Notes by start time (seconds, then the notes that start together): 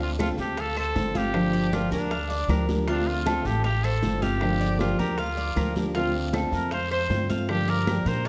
Already playing: D2 D3 A3 C4 F4
0.01 F4, high conga
0.18 D3 A3 C4 F4 A4, high bongo, high conga, short guiro, claves
0.37 D2 A3 C4 F4 G4, high bongo, high conga, short guiro
0.57 A4 F5, muted nylon-string guitar stroke, high bongo, high conga, long guiro
0.76 A4 C5, high bongo, high conga, claves
0.95 G1 D3 A3 C4 F4, high bongo, low bongo, high conga, short guiro
1.14 A3 C4 F4 G4 F5, high bongo, high conga, short guiro
1.33 D3 F3 A#3 D4 G4, high bongo, high conga, long guiro, claves
1.53 D5, high conga
1.72 D3 F3 A#3 D4 F4 G4, high bongo, high conga, short guiro, claves
1.91 D2 A#3 D4 G4 A#4, high bongo, high conga, short guiro
2.11 F5, muted nylon-string guitar stroke, high bongo, high conga, long guiro
2.30 D5, high bongo, high conga
2.48 D2 F3 A#3 D4 G4 A#4, high bongo, low bongo, high conga, short guiro, claves
2.69 F3 A#3 D4 G4, high bongo, high conga, short guiro
2.88 D3 A3 C4 D4 F4, high bongo, high conga, long guiro
3.07 F4, high conga
3.26 D3 A3 C4 F4 A4, high bongo, high conga, short guiro, claves
3.45 A1 A3 C4 F4 G4, high bongo, high conga, short guiro
3.64 G4 F5, muted nylon-string guitar stroke, high bongo, high conga, long guiro
3.84 A4 C5, high bongo, high conga, claves
4.03 G1 D3 A3 C4 F4, high bongo, low bongo, high conga, short guiro
4.22 A3 C4 F4 G4 F5, high bongo, high conga, short guiro
4.41 D3 F3 A#3 D4 G4, high bongo, high conga, long guiro, claves
4.61 D5
4.79 D3 F3 A#3 D4 F4 G4, high bongo, high conga, short guiro, claves
4.98 D2 A#3 D4 G4 A#4, high bongo, high conga, short guiro
5.18 F4 F5, muted nylon-string guitar stroke, high bongo, high conga, long guiro
5.37 D5, high bongo, high conga
5.56 D2 F3 A#3 D4 G4 A#4, high bongo, low bongo, high conga, short guiro, claves
5.75 F3 A#3 D4 G4, high bongo, high conga, short guiro
5.95 D3 A3 C4 F4, high bongo, high conga, long guiro
6.15 high conga
6.33 D3 A3 C4 F4 A4, high bongo, high conga, short guiro, claves
6.52 F2 A3 C4 F4 A#4, high bongo, high conga, short guiro
6.71 C5 F5, muted nylon-string guitar stroke, high bongo, high conga, long guiro
6.91 C5, high bongo, high conga, claves
7.10 G2 D3 A3 C4 F4, high bongo, low bongo, high conga, short guiro
7.29 A3 C4 F4 F5, high bongo, high conga, short guiro
7.49 D3 F3 A#3 D4 G4, high bongo, high conga, long guiro, claves
7.68 A#4 D5, high conga
7.87 D3 F3 A#3 D4 G4, high bongo, high conga, short guiro, claves
8.06 A#2 A#3 D4 G4 A#4 C5, high bongo, high conga, short guiro
8.25 F5, high bongo